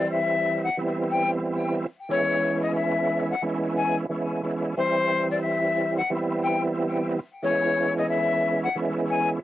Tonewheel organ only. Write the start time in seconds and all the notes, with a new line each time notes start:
Already playing: E3 G3 C4 E4
0.77 E3 G3 B3 C4 E4
2.09 E3 G#3 B3 C#4 E4
3.42 E3 G#3 B3 C#4 E4
4.09 E3 G#3 B3 C#4 E4
4.42 E3 G#3 B3 C#4 E4
4.77 E3 G3 C4 E4
6.10 E3 G3 B3 C4 E4
7.42 E3 G#3 B3 C#4 E4
8.75 E3 G#3 B3 C#4 E4